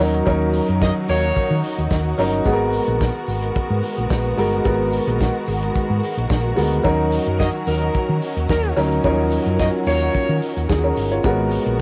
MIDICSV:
0, 0, Header, 1, 7, 480
1, 0, Start_track
1, 0, Tempo, 548948
1, 233, Time_signature, 4, 2, 24, 8
1, 10330, End_track
2, 0, Start_track
2, 0, Title_t, "Horn section"
2, 0, Program_c, 0, 61
2, 603, Note_on_c, 0, 54, 87
2, 603, Note_on_c, 0, 70, 87
2, 604, Note_on_c, 0, 63, 79
2, 692, Note_off_c, 0, 54, 0
2, 692, Note_off_c, 0, 63, 0
2, 692, Note_off_c, 0, 70, 0
2, 714, Note_on_c, 0, 66, 86
2, 715, Note_on_c, 0, 58, 85
2, 716, Note_on_c, 0, 75, 107
2, 790, Note_off_c, 0, 58, 0
2, 790, Note_off_c, 0, 66, 0
2, 791, Note_off_c, 0, 75, 0
2, 953, Note_on_c, 0, 58, 118
2, 953, Note_on_c, 0, 66, 114
2, 953, Note_on_c, 0, 73, 127
2, 1403, Note_off_c, 0, 58, 0
2, 1403, Note_off_c, 0, 66, 0
2, 1403, Note_off_c, 0, 73, 0
2, 6355, Note_on_c, 0, 54, 76
2, 6355, Note_on_c, 0, 70, 82
2, 6356, Note_on_c, 0, 63, 74
2, 6445, Note_off_c, 0, 54, 0
2, 6445, Note_off_c, 0, 70, 0
2, 6446, Note_off_c, 0, 63, 0
2, 6467, Note_on_c, 0, 75, 106
2, 6468, Note_on_c, 0, 58, 85
2, 6468, Note_on_c, 0, 66, 83
2, 6544, Note_off_c, 0, 66, 0
2, 6544, Note_off_c, 0, 75, 0
2, 6545, Note_off_c, 0, 58, 0
2, 6706, Note_on_c, 0, 63, 102
2, 6707, Note_on_c, 0, 54, 97
2, 6707, Note_on_c, 0, 70, 108
2, 7159, Note_off_c, 0, 54, 0
2, 7159, Note_off_c, 0, 63, 0
2, 7159, Note_off_c, 0, 70, 0
2, 7424, Note_on_c, 0, 54, 92
2, 7425, Note_on_c, 0, 63, 92
2, 7425, Note_on_c, 0, 70, 107
2, 7618, Note_off_c, 0, 54, 0
2, 7619, Note_off_c, 0, 63, 0
2, 7619, Note_off_c, 0, 70, 0
2, 8276, Note_on_c, 0, 54, 77
2, 8277, Note_on_c, 0, 63, 77
2, 8277, Note_on_c, 0, 70, 81
2, 8367, Note_off_c, 0, 54, 0
2, 8367, Note_off_c, 0, 63, 0
2, 8367, Note_off_c, 0, 70, 0
2, 8389, Note_on_c, 0, 58, 86
2, 8389, Note_on_c, 0, 66, 88
2, 8389, Note_on_c, 0, 75, 99
2, 8465, Note_off_c, 0, 66, 0
2, 8466, Note_off_c, 0, 58, 0
2, 8466, Note_off_c, 0, 75, 0
2, 8629, Note_on_c, 0, 58, 122
2, 8631, Note_on_c, 0, 66, 117
2, 8631, Note_on_c, 0, 73, 127
2, 9081, Note_off_c, 0, 58, 0
2, 9082, Note_off_c, 0, 66, 0
2, 9082, Note_off_c, 0, 73, 0
2, 10330, End_track
3, 0, Start_track
3, 0, Title_t, "Grand piano"
3, 0, Program_c, 1, 0
3, 0, Control_c, 1, 64, 127
3, 0, Note_on_c, 1, 54, 79
3, 0, Note_on_c, 1, 61, 71
3, 0, Note_on_c, 1, 63, 70
3, 0, Note_on_c, 1, 70, 94
3, 1, Note_off_c, 1, 70, 0
3, 1, Note_on_c, 1, 70, 80
3, 203, Note_off_c, 1, 54, 0
3, 205, Note_off_c, 1, 61, 0
3, 208, Note_off_c, 1, 63, 0
3, 209, Note_off_c, 1, 70, 0
3, 225, Note_on_c, 1, 54, 86
3, 233, Note_on_c, 1, 61, 82
3, 235, Note_on_c, 1, 63, 79
3, 238, Note_on_c, 1, 70, 93
3, 1077, Note_off_c, 1, 54, 0
3, 1081, Note_off_c, 1, 61, 0
3, 1082, Note_off_c, 1, 63, 0
3, 1084, Note_off_c, 1, 70, 0
3, 1906, Note_on_c, 1, 54, 70
3, 1911, Note_on_c, 1, 61, 71
3, 1916, Note_on_c, 1, 63, 74
3, 1918, Note_on_c, 1, 70, 86
3, 2120, Note_off_c, 1, 54, 0
3, 2123, Note_off_c, 1, 61, 0
3, 2125, Note_off_c, 1, 63, 0
3, 2126, Note_off_c, 1, 70, 0
3, 2141, Note_on_c, 1, 56, 89
3, 2147, Note_on_c, 1, 59, 82
3, 2149, Note_on_c, 1, 66, 82
3, 2155, Note_on_c, 1, 68, 71
3, 2160, Control_c, 1, 64, 0
3, 2209, Note_on_c, 1, 70, 97
3, 2212, Note_off_c, 1, 68, 0
3, 2314, Control_c, 1, 64, 127
3, 2994, Note_off_c, 1, 56, 0
3, 2998, Note_off_c, 1, 59, 0
3, 2998, Note_off_c, 1, 66, 0
3, 3028, Note_off_c, 1, 70, 0
3, 3824, Note_on_c, 1, 56, 75
3, 3825, Note_on_c, 1, 59, 73
3, 3830, Note_on_c, 1, 66, 72
3, 3834, Note_on_c, 1, 70, 87
3, 4038, Note_off_c, 1, 56, 0
3, 4039, Note_off_c, 1, 59, 0
3, 4041, Note_off_c, 1, 66, 0
3, 4044, Note_off_c, 1, 70, 0
3, 4060, Note_on_c, 1, 56, 82
3, 4062, Note_on_c, 1, 59, 74
3, 4065, Note_on_c, 1, 66, 87
3, 4070, Note_on_c, 1, 70, 84
3, 4914, Note_off_c, 1, 56, 0
3, 4915, Note_off_c, 1, 59, 0
3, 4916, Note_off_c, 1, 66, 0
3, 4919, Note_off_c, 1, 70, 0
3, 5734, Note_on_c, 1, 56, 77
3, 5740, Note_on_c, 1, 59, 74
3, 5743, Note_on_c, 1, 66, 66
3, 5751, Note_on_c, 1, 70, 78
3, 5954, Note_off_c, 1, 56, 0
3, 5957, Note_off_c, 1, 59, 0
3, 5958, Note_off_c, 1, 66, 0
3, 5962, Note_off_c, 1, 70, 0
3, 5976, Note_on_c, 1, 54, 80
3, 5981, Note_on_c, 1, 61, 72
3, 5987, Note_on_c, 1, 63, 74
3, 5990, Note_on_c, 1, 70, 100
3, 6000, Control_c, 1, 64, 0
3, 6179, Control_c, 1, 64, 127
3, 6832, Note_off_c, 1, 54, 0
3, 6835, Note_off_c, 1, 61, 0
3, 6838, Note_off_c, 1, 63, 0
3, 6839, Note_off_c, 1, 70, 0
3, 7664, Note_on_c, 1, 54, 82
3, 7666, Note_on_c, 1, 61, 72
3, 7671, Note_on_c, 1, 63, 71
3, 7674, Note_on_c, 1, 70, 90
3, 7879, Note_off_c, 1, 54, 0
3, 7880, Note_off_c, 1, 61, 0
3, 7883, Note_off_c, 1, 63, 0
3, 7884, Note_off_c, 1, 70, 0
3, 7900, Note_on_c, 1, 53, 73
3, 7906, Note_on_c, 1, 61, 76
3, 7910, Note_on_c, 1, 63, 75
3, 7914, Note_on_c, 1, 70, 101
3, 7957, Note_on_c, 1, 54, 83
3, 7964, Note_off_c, 1, 53, 0
3, 8758, Note_off_c, 1, 61, 0
3, 8760, Note_off_c, 1, 63, 0
3, 8762, Note_off_c, 1, 70, 0
3, 8784, Note_off_c, 1, 54, 0
3, 9346, Note_on_c, 1, 68, 68
3, 9469, Note_off_c, 1, 68, 0
3, 9474, Note_on_c, 1, 70, 70
3, 9479, Note_on_c, 1, 61, 59
3, 9704, Note_off_c, 1, 70, 0
3, 9706, Note_off_c, 1, 61, 0
3, 9719, Note_on_c, 1, 73, 61
3, 9727, Note_on_c, 1, 65, 57
3, 9828, Note_on_c, 1, 56, 89
3, 9830, Note_on_c, 1, 59, 83
3, 9836, Note_on_c, 1, 66, 79
3, 9840, Note_on_c, 1, 70, 91
3, 9842, Control_c, 1, 64, 0
3, 9947, Note_off_c, 1, 73, 0
3, 9951, Note_off_c, 1, 65, 0
3, 9990, Control_c, 1, 64, 127
3, 10330, Note_off_c, 1, 56, 0
3, 10330, Note_off_c, 1, 59, 0
3, 10330, Note_off_c, 1, 66, 0
3, 10330, Note_off_c, 1, 70, 0
3, 10330, End_track
4, 0, Start_track
4, 0, Title_t, "String section"
4, 0, Program_c, 2, 48
4, 0, Note_on_c, 2, 51, 67
4, 0, Note_on_c, 2, 54, 64
4, 0, Note_on_c, 2, 61, 68
4, 0, Note_on_c, 2, 66, 75
4, 0, Note_on_c, 2, 70, 61
4, 214, Note_off_c, 2, 61, 0
4, 227, Note_on_c, 2, 63, 61
4, 2114, Note_off_c, 2, 51, 0
4, 2116, Note_off_c, 2, 54, 0
4, 2128, Note_off_c, 2, 63, 0
4, 2148, Note_on_c, 2, 51, 67
4, 2149, Note_on_c, 2, 59, 66
4, 2150, Note_on_c, 2, 56, 65
4, 5953, Note_off_c, 2, 56, 0
4, 5953, Note_off_c, 2, 59, 0
4, 5984, Note_on_c, 2, 61, 65
4, 5986, Note_on_c, 2, 54, 66
4, 9794, Note_off_c, 2, 61, 0
4, 9795, Note_off_c, 2, 54, 0
4, 9796, Note_off_c, 2, 66, 0
4, 9796, Note_off_c, 2, 70, 0
4, 9832, Note_on_c, 2, 56, 68
4, 9832, Note_on_c, 2, 66, 78
4, 9833, Note_on_c, 2, 59, 60
4, 9833, Note_on_c, 2, 70, 62
4, 10330, Note_off_c, 2, 51, 0
4, 10330, Note_off_c, 2, 56, 0
4, 10330, Note_off_c, 2, 59, 0
4, 10330, Note_off_c, 2, 66, 0
4, 10330, Note_off_c, 2, 70, 0
4, 10330, End_track
5, 0, Start_track
5, 0, Title_t, "Fingered electric bass"
5, 0, Program_c, 3, 33
5, 0, Note_on_c, 3, 39, 87
5, 180, Note_off_c, 3, 39, 0
5, 234, Note_on_c, 3, 39, 101
5, 518, Note_off_c, 3, 39, 0
5, 602, Note_on_c, 3, 42, 75
5, 787, Note_off_c, 3, 42, 0
5, 954, Note_on_c, 3, 39, 95
5, 1139, Note_off_c, 3, 39, 0
5, 1317, Note_on_c, 3, 51, 86
5, 1405, Note_off_c, 3, 51, 0
5, 1560, Note_on_c, 3, 39, 88
5, 1647, Note_off_c, 3, 39, 0
5, 1669, Note_on_c, 3, 39, 92
5, 1855, Note_off_c, 3, 39, 0
5, 1908, Note_on_c, 3, 31, 80
5, 2095, Note_off_c, 3, 31, 0
5, 2149, Note_on_c, 3, 32, 93
5, 2434, Note_off_c, 3, 32, 0
5, 2516, Note_on_c, 3, 34, 89
5, 2703, Note_off_c, 3, 34, 0
5, 2868, Note_on_c, 3, 32, 75
5, 3054, Note_off_c, 3, 32, 0
5, 3239, Note_on_c, 3, 44, 91
5, 3325, Note_off_c, 3, 44, 0
5, 3479, Note_on_c, 3, 34, 85
5, 3565, Note_off_c, 3, 34, 0
5, 3589, Note_on_c, 3, 34, 92
5, 3775, Note_off_c, 3, 34, 0
5, 3827, Note_on_c, 3, 31, 81
5, 4014, Note_off_c, 3, 31, 0
5, 4070, Note_on_c, 3, 32, 97
5, 4354, Note_off_c, 3, 32, 0
5, 4437, Note_on_c, 3, 34, 96
5, 4623, Note_off_c, 3, 34, 0
5, 4789, Note_on_c, 3, 32, 90
5, 4975, Note_off_c, 3, 32, 0
5, 5159, Note_on_c, 3, 44, 72
5, 5245, Note_off_c, 3, 44, 0
5, 5398, Note_on_c, 3, 34, 84
5, 5485, Note_off_c, 3, 34, 0
5, 5512, Note_on_c, 3, 34, 89
5, 5697, Note_off_c, 3, 34, 0
5, 5751, Note_on_c, 3, 38, 86
5, 5936, Note_off_c, 3, 38, 0
5, 5987, Note_on_c, 3, 39, 96
5, 6273, Note_off_c, 3, 39, 0
5, 6357, Note_on_c, 3, 42, 86
5, 6543, Note_off_c, 3, 42, 0
5, 6708, Note_on_c, 3, 39, 83
5, 6894, Note_off_c, 3, 39, 0
5, 7076, Note_on_c, 3, 51, 88
5, 7164, Note_off_c, 3, 51, 0
5, 7314, Note_on_c, 3, 39, 92
5, 7402, Note_off_c, 3, 39, 0
5, 7428, Note_on_c, 3, 39, 92
5, 7615, Note_off_c, 3, 39, 0
5, 7666, Note_on_c, 3, 38, 94
5, 7854, Note_off_c, 3, 38, 0
5, 7907, Note_on_c, 3, 39, 98
5, 8193, Note_off_c, 3, 39, 0
5, 8274, Note_on_c, 3, 42, 92
5, 8462, Note_off_c, 3, 42, 0
5, 8626, Note_on_c, 3, 39, 95
5, 8814, Note_off_c, 3, 39, 0
5, 8998, Note_on_c, 3, 51, 96
5, 9086, Note_off_c, 3, 51, 0
5, 9240, Note_on_c, 3, 39, 83
5, 9326, Note_off_c, 3, 39, 0
5, 9353, Note_on_c, 3, 39, 85
5, 9539, Note_off_c, 3, 39, 0
5, 9592, Note_on_c, 3, 31, 87
5, 9778, Note_off_c, 3, 31, 0
5, 9830, Note_on_c, 3, 32, 114
5, 10116, Note_off_c, 3, 32, 0
5, 10198, Note_on_c, 3, 34, 96
5, 10330, Note_off_c, 3, 34, 0
5, 10330, End_track
6, 0, Start_track
6, 0, Title_t, "Muted fingered electric bass strokes"
6, 1195, Note_on_c, 9, 29, 47
6, 1282, Note_off_c, 9, 29, 0
6, 3113, Note_on_c, 9, 29, 47
6, 3201, Note_off_c, 9, 29, 0
6, 5033, Note_on_c, 9, 29, 44
6, 5120, Note_off_c, 9, 29, 0
6, 6950, Note_on_c, 9, 29, 46
6, 7038, Note_off_c, 9, 29, 0
6, 8873, Note_on_c, 9, 29, 46
6, 8960, Note_off_c, 9, 29, 0
6, 10330, End_track
7, 0, Start_track
7, 0, Title_t, "Drums"
7, 0, Note_on_c, 9, 46, 77
7, 85, Note_off_c, 9, 46, 0
7, 125, Note_on_c, 9, 42, 49
7, 212, Note_off_c, 9, 42, 0
7, 228, Note_on_c, 9, 54, 57
7, 232, Note_on_c, 9, 42, 68
7, 233, Note_on_c, 9, 36, 100
7, 315, Note_off_c, 9, 54, 0
7, 320, Note_off_c, 9, 42, 0
7, 321, Note_off_c, 9, 36, 0
7, 466, Note_on_c, 9, 54, 54
7, 468, Note_on_c, 9, 46, 62
7, 553, Note_off_c, 9, 54, 0
7, 556, Note_off_c, 9, 46, 0
7, 594, Note_on_c, 9, 42, 45
7, 682, Note_off_c, 9, 42, 0
7, 711, Note_on_c, 9, 42, 60
7, 714, Note_on_c, 9, 36, 99
7, 718, Note_on_c, 9, 54, 88
7, 719, Note_on_c, 9, 38, 85
7, 798, Note_off_c, 9, 42, 0
7, 802, Note_off_c, 9, 36, 0
7, 805, Note_off_c, 9, 54, 0
7, 806, Note_off_c, 9, 38, 0
7, 944, Note_on_c, 9, 54, 55
7, 947, Note_on_c, 9, 46, 64
7, 1031, Note_off_c, 9, 54, 0
7, 1035, Note_off_c, 9, 46, 0
7, 1074, Note_on_c, 9, 42, 48
7, 1161, Note_off_c, 9, 42, 0
7, 1191, Note_on_c, 9, 42, 63
7, 1194, Note_on_c, 9, 36, 113
7, 1278, Note_off_c, 9, 42, 0
7, 1281, Note_off_c, 9, 36, 0
7, 1427, Note_on_c, 9, 54, 40
7, 1431, Note_on_c, 9, 46, 73
7, 1515, Note_off_c, 9, 54, 0
7, 1518, Note_off_c, 9, 46, 0
7, 1559, Note_on_c, 9, 42, 53
7, 1646, Note_off_c, 9, 42, 0
7, 1667, Note_on_c, 9, 42, 80
7, 1669, Note_on_c, 9, 36, 115
7, 1671, Note_on_c, 9, 54, 88
7, 1673, Note_on_c, 9, 38, 104
7, 1754, Note_off_c, 9, 42, 0
7, 1756, Note_off_c, 9, 36, 0
7, 1759, Note_off_c, 9, 54, 0
7, 1761, Note_off_c, 9, 38, 0
7, 1905, Note_on_c, 9, 54, 52
7, 1909, Note_on_c, 9, 46, 80
7, 1992, Note_off_c, 9, 54, 0
7, 1996, Note_off_c, 9, 46, 0
7, 2038, Note_on_c, 9, 42, 47
7, 2125, Note_off_c, 9, 42, 0
7, 2139, Note_on_c, 9, 54, 63
7, 2147, Note_on_c, 9, 42, 65
7, 2148, Note_on_c, 9, 36, 105
7, 2227, Note_off_c, 9, 54, 0
7, 2235, Note_off_c, 9, 36, 0
7, 2235, Note_off_c, 9, 42, 0
7, 2379, Note_on_c, 9, 54, 56
7, 2383, Note_on_c, 9, 46, 66
7, 2466, Note_off_c, 9, 54, 0
7, 2470, Note_off_c, 9, 46, 0
7, 2512, Note_on_c, 9, 42, 49
7, 2599, Note_off_c, 9, 42, 0
7, 2629, Note_on_c, 9, 42, 60
7, 2631, Note_on_c, 9, 54, 80
7, 2632, Note_on_c, 9, 36, 113
7, 2637, Note_on_c, 9, 38, 81
7, 2717, Note_off_c, 9, 42, 0
7, 2718, Note_off_c, 9, 54, 0
7, 2719, Note_off_c, 9, 36, 0
7, 2725, Note_off_c, 9, 38, 0
7, 2854, Note_on_c, 9, 54, 56
7, 2865, Note_on_c, 9, 46, 59
7, 2941, Note_off_c, 9, 54, 0
7, 2953, Note_off_c, 9, 46, 0
7, 2993, Note_on_c, 9, 42, 51
7, 3081, Note_off_c, 9, 42, 0
7, 3109, Note_on_c, 9, 42, 71
7, 3112, Note_on_c, 9, 36, 107
7, 3196, Note_off_c, 9, 42, 0
7, 3200, Note_off_c, 9, 36, 0
7, 3347, Note_on_c, 9, 46, 67
7, 3347, Note_on_c, 9, 54, 39
7, 3435, Note_off_c, 9, 46, 0
7, 3435, Note_off_c, 9, 54, 0
7, 3477, Note_on_c, 9, 42, 51
7, 3565, Note_off_c, 9, 42, 0
7, 3587, Note_on_c, 9, 54, 92
7, 3588, Note_on_c, 9, 36, 114
7, 3588, Note_on_c, 9, 42, 70
7, 3594, Note_on_c, 9, 38, 104
7, 3675, Note_off_c, 9, 36, 0
7, 3675, Note_off_c, 9, 42, 0
7, 3675, Note_off_c, 9, 54, 0
7, 3681, Note_off_c, 9, 38, 0
7, 3826, Note_on_c, 9, 54, 54
7, 3828, Note_on_c, 9, 46, 73
7, 3913, Note_off_c, 9, 54, 0
7, 3915, Note_off_c, 9, 46, 0
7, 3957, Note_on_c, 9, 42, 49
7, 4045, Note_off_c, 9, 42, 0
7, 4060, Note_on_c, 9, 54, 62
7, 4068, Note_on_c, 9, 36, 103
7, 4069, Note_on_c, 9, 42, 58
7, 4147, Note_off_c, 9, 54, 0
7, 4156, Note_off_c, 9, 36, 0
7, 4157, Note_off_c, 9, 42, 0
7, 4297, Note_on_c, 9, 54, 55
7, 4307, Note_on_c, 9, 46, 64
7, 4384, Note_off_c, 9, 54, 0
7, 4394, Note_off_c, 9, 46, 0
7, 4436, Note_on_c, 9, 42, 48
7, 4523, Note_off_c, 9, 42, 0
7, 4548, Note_on_c, 9, 54, 86
7, 4553, Note_on_c, 9, 36, 98
7, 4553, Note_on_c, 9, 42, 58
7, 4561, Note_on_c, 9, 38, 84
7, 4635, Note_off_c, 9, 54, 0
7, 4640, Note_off_c, 9, 36, 0
7, 4640, Note_off_c, 9, 42, 0
7, 4648, Note_off_c, 9, 38, 0
7, 4777, Note_on_c, 9, 54, 54
7, 4791, Note_on_c, 9, 46, 61
7, 4864, Note_off_c, 9, 54, 0
7, 4878, Note_off_c, 9, 46, 0
7, 4918, Note_on_c, 9, 42, 55
7, 5005, Note_off_c, 9, 42, 0
7, 5024, Note_on_c, 9, 54, 35
7, 5031, Note_on_c, 9, 42, 65
7, 5033, Note_on_c, 9, 36, 102
7, 5111, Note_off_c, 9, 54, 0
7, 5118, Note_off_c, 9, 42, 0
7, 5120, Note_off_c, 9, 36, 0
7, 5264, Note_on_c, 9, 54, 38
7, 5273, Note_on_c, 9, 46, 65
7, 5352, Note_off_c, 9, 54, 0
7, 5360, Note_off_c, 9, 46, 0
7, 5405, Note_on_c, 9, 42, 53
7, 5492, Note_off_c, 9, 42, 0
7, 5504, Note_on_c, 9, 54, 101
7, 5510, Note_on_c, 9, 36, 124
7, 5514, Note_on_c, 9, 42, 72
7, 5520, Note_on_c, 9, 38, 111
7, 5591, Note_off_c, 9, 54, 0
7, 5597, Note_off_c, 9, 36, 0
7, 5601, Note_off_c, 9, 42, 0
7, 5607, Note_off_c, 9, 38, 0
7, 5742, Note_on_c, 9, 54, 58
7, 5753, Note_on_c, 9, 46, 77
7, 5829, Note_off_c, 9, 54, 0
7, 5841, Note_off_c, 9, 46, 0
7, 5880, Note_on_c, 9, 42, 42
7, 5967, Note_off_c, 9, 42, 0
7, 5976, Note_on_c, 9, 54, 62
7, 5987, Note_on_c, 9, 36, 112
7, 5987, Note_on_c, 9, 42, 72
7, 6063, Note_off_c, 9, 54, 0
7, 6074, Note_off_c, 9, 36, 0
7, 6075, Note_off_c, 9, 42, 0
7, 6218, Note_on_c, 9, 54, 49
7, 6225, Note_on_c, 9, 46, 73
7, 6306, Note_off_c, 9, 54, 0
7, 6313, Note_off_c, 9, 46, 0
7, 6352, Note_on_c, 9, 42, 46
7, 6440, Note_off_c, 9, 42, 0
7, 6470, Note_on_c, 9, 36, 109
7, 6470, Note_on_c, 9, 42, 63
7, 6471, Note_on_c, 9, 54, 85
7, 6478, Note_on_c, 9, 38, 94
7, 6558, Note_off_c, 9, 36, 0
7, 6558, Note_off_c, 9, 42, 0
7, 6558, Note_off_c, 9, 54, 0
7, 6565, Note_off_c, 9, 38, 0
7, 6694, Note_on_c, 9, 54, 52
7, 6703, Note_on_c, 9, 46, 66
7, 6781, Note_off_c, 9, 54, 0
7, 6790, Note_off_c, 9, 46, 0
7, 6831, Note_on_c, 9, 42, 56
7, 6918, Note_off_c, 9, 42, 0
7, 6945, Note_on_c, 9, 54, 34
7, 6948, Note_on_c, 9, 42, 69
7, 6950, Note_on_c, 9, 36, 99
7, 7033, Note_off_c, 9, 54, 0
7, 7035, Note_off_c, 9, 42, 0
7, 7037, Note_off_c, 9, 36, 0
7, 7187, Note_on_c, 9, 46, 61
7, 7187, Note_on_c, 9, 54, 40
7, 7274, Note_off_c, 9, 46, 0
7, 7275, Note_off_c, 9, 54, 0
7, 7320, Note_on_c, 9, 42, 54
7, 7408, Note_off_c, 9, 42, 0
7, 7423, Note_on_c, 9, 54, 99
7, 7428, Note_on_c, 9, 36, 123
7, 7429, Note_on_c, 9, 42, 70
7, 7435, Note_on_c, 9, 38, 110
7, 7510, Note_off_c, 9, 54, 0
7, 7515, Note_off_c, 9, 36, 0
7, 7516, Note_off_c, 9, 42, 0
7, 7522, Note_off_c, 9, 38, 0
7, 7662, Note_on_c, 9, 54, 55
7, 7669, Note_on_c, 9, 46, 71
7, 7750, Note_off_c, 9, 54, 0
7, 7756, Note_off_c, 9, 46, 0
7, 7799, Note_on_c, 9, 42, 45
7, 7886, Note_off_c, 9, 42, 0
7, 7899, Note_on_c, 9, 54, 58
7, 7906, Note_on_c, 9, 36, 103
7, 7906, Note_on_c, 9, 42, 68
7, 7986, Note_off_c, 9, 54, 0
7, 7994, Note_off_c, 9, 36, 0
7, 7994, Note_off_c, 9, 42, 0
7, 8137, Note_on_c, 9, 54, 60
7, 8143, Note_on_c, 9, 46, 68
7, 8225, Note_off_c, 9, 54, 0
7, 8231, Note_off_c, 9, 46, 0
7, 8267, Note_on_c, 9, 42, 48
7, 8354, Note_off_c, 9, 42, 0
7, 8385, Note_on_c, 9, 42, 67
7, 8390, Note_on_c, 9, 36, 115
7, 8392, Note_on_c, 9, 54, 94
7, 8393, Note_on_c, 9, 38, 80
7, 8472, Note_off_c, 9, 42, 0
7, 8477, Note_off_c, 9, 36, 0
7, 8479, Note_off_c, 9, 54, 0
7, 8480, Note_off_c, 9, 38, 0
7, 8617, Note_on_c, 9, 54, 57
7, 8624, Note_on_c, 9, 46, 62
7, 8704, Note_off_c, 9, 54, 0
7, 8711, Note_off_c, 9, 46, 0
7, 8751, Note_on_c, 9, 42, 57
7, 8838, Note_off_c, 9, 42, 0
7, 8866, Note_on_c, 9, 54, 35
7, 8869, Note_on_c, 9, 42, 69
7, 8872, Note_on_c, 9, 36, 92
7, 8954, Note_off_c, 9, 54, 0
7, 8957, Note_off_c, 9, 42, 0
7, 8959, Note_off_c, 9, 36, 0
7, 9111, Note_on_c, 9, 46, 69
7, 9198, Note_off_c, 9, 46, 0
7, 9246, Note_on_c, 9, 42, 57
7, 9333, Note_off_c, 9, 42, 0
7, 9348, Note_on_c, 9, 54, 98
7, 9352, Note_on_c, 9, 36, 122
7, 9355, Note_on_c, 9, 42, 73
7, 9361, Note_on_c, 9, 38, 122
7, 9436, Note_off_c, 9, 54, 0
7, 9440, Note_off_c, 9, 36, 0
7, 9442, Note_off_c, 9, 42, 0
7, 9449, Note_off_c, 9, 38, 0
7, 9584, Note_on_c, 9, 54, 55
7, 9593, Note_on_c, 9, 46, 81
7, 9672, Note_off_c, 9, 54, 0
7, 9680, Note_off_c, 9, 46, 0
7, 9719, Note_on_c, 9, 42, 46
7, 9806, Note_off_c, 9, 42, 0
7, 9822, Note_on_c, 9, 54, 61
7, 9828, Note_on_c, 9, 42, 69
7, 9830, Note_on_c, 9, 36, 104
7, 9909, Note_off_c, 9, 54, 0
7, 9915, Note_off_c, 9, 42, 0
7, 9917, Note_off_c, 9, 36, 0
7, 10064, Note_on_c, 9, 54, 53
7, 10065, Note_on_c, 9, 46, 71
7, 10152, Note_off_c, 9, 54, 0
7, 10153, Note_off_c, 9, 46, 0
7, 10194, Note_on_c, 9, 42, 45
7, 10281, Note_off_c, 9, 42, 0
7, 10330, End_track
0, 0, End_of_file